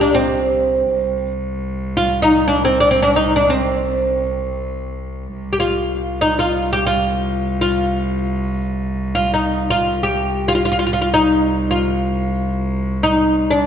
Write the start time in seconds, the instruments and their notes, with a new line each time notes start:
Already playing: cello C2
0.01 oud D4
0.14 oud C4
0.92 cello C2
1.97 oud F4
2.22 oud D#4
2.48 oud D4
2.65 oud C4
2.80 oud D4
2.91 oud C4
3.02 oud D4
3.16 oud D#4
3.36 oud D4
3.50 oud C4
5.36 cello C2
5.53 oud G4
5.60 oud F4
6.21 oud D#4
6.39 oud F4
6.73 oud G4
6.87 oud F4
7.61 oud F4
9.15 oud F4
9.34 oud D#4
9.70 oud F4
9.80 cello C2
10.03 oud G4
10.48 oud F4
10.55 oud F4
10.65 oud F4
10.72 oud F4
10.79 oud F4
10.87 oud F4
10.93 oud F4
11.01 oud F4
11.14 oud D#4
11.71 oud F4
13.03 oud D#4
13.51 oud D4